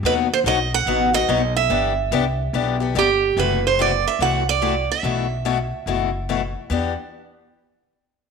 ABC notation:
X:1
M:4/4
L:1/8
Q:"Swing" 1/4=144
K:Em
V:1 name="Steel-string acoustic guitar"
B c ^d f2 d2 e- | e6 G2 | B c d e f d2 e- | e6 z2 |
z8 |]
V:2 name="Steel-string acoustic guitar"
[B,,F,B,^DF] z [B,,F,B,DF] z [B,,F,B,DF] [B,DF] [B,,F,B,DF] z | [E,B,DG] z [E,B,DG] z [E,B,DG] [B,DG] [E,B,DG] z | [C,E,A,EF] z [C,E,A,EF] z [C,E,A,EF] z [C,E,A,EF] z | [B,,E,A,EF] z [B,,E,A,EF] z [B,,E,A,EF] z [B,,E,A,EF] z |
[E,B,DG] z6 z |]
V:3 name="Upright bass" clef=bass
^D,,2 B,,,2 A,,,2 B,,,2 | G,,,2 C,,2 B,,,2 G,,,2 | F,,,4 C,,4 | B,,,4 F,,,4 |
E,, z6 z |]